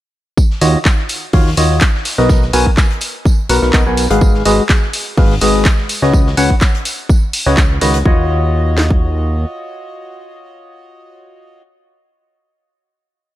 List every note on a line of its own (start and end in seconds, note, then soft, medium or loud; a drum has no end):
0.38 kick loud
0.38 tambourine medium
0.51 snare soft
0.61 0.76 D#2 medium
0.61 0.79 D#3 medium
0.61 0.79 F4 medium
0.61 0.79 F#4 medium
0.61 0.79 C#5 medium
0.61 0.79 D#5 loud
0.61 open hi-hat medium
0.61 tambourine medium
0.85 kick loud
0.85 snare loud
0.85 clap loud
0.85 tambourine medium
0.98 snare soft
1.09 open hi-hat loud
1.09 tambourine medium
1.33 1.55 D#2 medium
1.33 1.51 D#3 medium
1.33 1.51 F4 medium
1.33 1.51 F#4 medium
1.33 1.51 C#5 medium
1.33 1.51 F5 medium
1.33 kick loud
1.33 open hi-hat medium
1.47 snare medium
1.56 1.81 D#2 loud
1.56 1.84 D#3 medium
1.56 1.84 F4 medium
1.56 1.84 F#4 medium
1.56 1.84 C#5 medium
1.56 1.84 D#5 medium
1.56 snare soft
1.56 open hi-hat loud
1.56 tambourine medium
1.81 kick loud
1.81 snare loud
1.81 clap loud
1.81 tambourine medium
1.95 snare soft
2.05 snare medium
2.05 open hi-hat loud
2.05 tambourine medium
2.18 2.51 B1 medium
2.18 2.45 B3 medium
2.18 2.45 F#4 medium
2.18 2.45 A#4 medium
2.18 2.45 B4 medium
2.18 2.45 D#5 medium
2.18 snare soft
2.29 kick loud
2.29 snare medium
2.29 tambourine medium
2.42 snare soft
2.53 2.68 B1 loud
2.53 2.71 B3 loud
2.53 2.71 F#4 medium
2.53 2.71 A#4 medium
2.53 2.71 B4 medium
2.53 2.71 G#5 loud
2.53 open hi-hat loud
2.53 tambourine medium
2.66 kick medium
2.77 kick loud
2.77 snare loud
2.77 clap loud
2.77 tambourine medium
2.91 closed hi-hat soft
3.01 open hi-hat loud
3.01 tambourine medium
3.25 kick loud
3.25 tambourine medium
3.49 3.60 B1 loud
3.49 3.61 B3 loud
3.49 3.61 F#4 medium
3.49 3.61 A#4 medium
3.49 3.61 B4 medium
3.49 3.61 F#5 loud
3.49 open hi-hat loud
3.49 tambourine medium
3.62 3.71 B1 medium
3.62 3.72 B3 medium
3.62 3.72 F#4 medium
3.62 3.72 A#4 medium
3.62 3.72 B4 medium
3.62 3.72 F#5 medium
3.62 snare soft
3.73 3.84 B1 loud
3.73 3.83 B3 medium
3.73 3.83 F#4 medium
3.73 3.83 A#4 medium
3.73 3.83 B4 medium
3.73 3.83 D#5 medium
3.73 kick loud
3.73 snare loud
3.73 clap loud
3.73 tambourine medium
3.86 4.08 B1 medium
3.86 4.07 B3 medium
3.86 4.07 F#4 medium
3.86 4.07 A#4 medium
3.86 4.07 B4 medium
3.86 4.07 G#5 medium
3.97 snare soft
3.97 open hi-hat loud
3.97 tambourine medium
4.10 4.43 G#1 medium
4.10 4.43 G#3 medium
4.10 4.43 F#4 medium
4.10 4.43 G#4 medium
4.10 4.43 B4 medium
4.10 4.43 F5 loud
4.10 closed hi-hat soft
4.21 kick loud
4.21 tambourine medium
4.34 snare soft
4.45 4.60 G#1 loud
4.45 4.63 G#3 loud
4.45 4.63 F#4 medium
4.45 4.63 G#4 medium
4.45 4.63 B4 medium
4.45 4.63 D#5 loud
4.45 open hi-hat loud
4.45 tambourine medium
4.69 kick loud
4.69 snare loud
4.69 clap loud
4.69 tambourine medium
4.82 snare soft
4.93 open hi-hat loud
4.93 tambourine medium
5.17 5.39 G#1 medium
5.17 5.35 G#3 medium
5.17 5.35 F#4 medium
5.17 5.35 G#4 medium
5.17 5.35 B4 medium
5.17 5.35 F5 loud
5.17 kick loud
5.17 open hi-hat medium
5.31 snare soft
5.41 5.66 G#1 loud
5.41 5.68 G#3 medium
5.41 5.68 F#4 medium
5.41 5.68 G#4 medium
5.41 5.68 B4 medium
5.41 5.68 D#5 medium
5.41 snare soft
5.41 open hi-hat loud
5.41 tambourine medium
5.65 kick loud
5.65 snare loud
5.65 clap loud
5.65 tambourine medium
5.78 snare soft
5.89 open hi-hat loud
5.89 tambourine medium
6.02 6.35 C#2 medium
6.02 6.29 C#4 medium
6.02 6.29 F#4 medium
6.02 6.29 B4 medium
6.02 6.29 C#5 medium
6.02 6.29 D#5 loud
6.02 snare medium
6.13 kick loud
6.13 tambourine medium
6.27 snare medium
6.37 6.52 C#2 medium
6.37 6.55 C#4 loud
6.37 6.55 F#4 medium
6.37 6.55 B4 medium
6.37 6.55 C#5 medium
6.37 6.55 F#5 loud
6.37 open hi-hat loud
6.37 tambourine medium
6.50 kick medium
6.61 kick loud
6.61 snare loud
6.61 clap loud
6.61 tambourine medium
6.75 closed hi-hat soft
6.85 open hi-hat loud
6.85 tambourine medium
7.09 kick loud
7.09 tambourine medium
7.33 open hi-hat loud
7.33 tambourine medium
7.46 7.79 C#2 loud
7.46 7.62 C#4 medium
7.46 7.62 F#4 medium
7.46 7.62 B4 medium
7.46 7.62 C#5 medium
7.46 7.62 D#5 medium
7.46 snare soft
7.57 kick loud
7.57 snare loud
7.57 clap loud
7.57 tambourine medium
7.81 8.03 C#2 loud
7.81 7.99 D#3 medium
7.81 7.99 F#4 medium
7.81 7.99 B4 medium
7.81 7.99 C#5 medium
7.81 7.99 D#5 loud
7.81 snare loud
7.81 open hi-hat loud
7.81 tambourine medium
7.94 closed hi-hat soft
8.06 9.46 D#2 medium
8.06 11.62 F4 medium
8.06 11.62 F#4 medium
8.06 11.62 C#5 medium
8.06 11.62 D#5 medium
8.06 kick loud
8.78 snare medium
8.90 kick medium